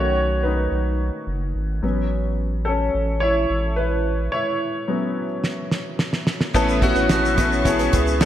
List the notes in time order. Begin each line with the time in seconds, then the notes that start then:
Already playing: B1 D#3 A3 C#4 F#4 C#5
0.43 D#4 B4
0.72 B1
1.27 F#1
1.55 G#1
1.83 A1 F#3 B3 C#4
2.65 C#4 A4
2.95 A1
3.20 E4 C#5
3.50 A1
3.76 E4 B4
4.32 E4 C#5
4.88 F#3 B3 C#4
5.44 snare
5.71 snare
5.99 snare
6.13 snare
6.27 snare
6.41 snare
6.54 A1 A2 A3 B3 C#4 E4 A4 B4 A5 C#6, kick, crash, shaker
6.69 shaker
6.82 B3 C#4 E4 F#4, kick, closed hi-hat
6.95 A1 A3 C#4 E4 B4, shaker
7.09 A1 B3 C#4 E4 F#4, snare, closed hi-hat, shaker
7.25 shaker
7.37 A3 B3 C#4 E4 B4, kick, closed hi-hat, shaker
7.52 shaker
7.65 B3 C#4 E4 G#4, kick, closed hi-hat, shaker
7.78 C#4 E4 B4, closed hi-hat, shaker
7.92 C#2 B3 C#4 E4 G#4, kick, closed hi-hat, shaker
8.07 shaker
8.21 B3 C#4 E4 A4, snare, closed hi-hat, shaker